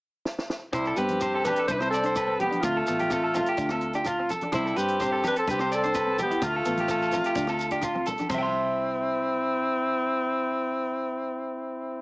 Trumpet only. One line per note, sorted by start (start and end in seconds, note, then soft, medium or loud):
0.75 1.01 G3 medium
1.00 1.48 C4 medium
1.47 1.69 D4 medium
1.69 1.78 E4 medium
1.76 1.81 D4 medium
1.76 1.89 E4 medium
1.90 2.35 C4 medium
2.41 2.65 B3 medium
2.63 4.06 A3 medium
4.56 4.80 G3 medium
4.79 5.25 C4 medium
5.26 5.37 D4 medium
5.38 5.48 C4 medium
5.50 5.75 C4 medium
5.75 6.20 C4 medium
6.22 6.47 B3 medium
6.45 7.85 A3 medium
8.33 12.02 E4 medium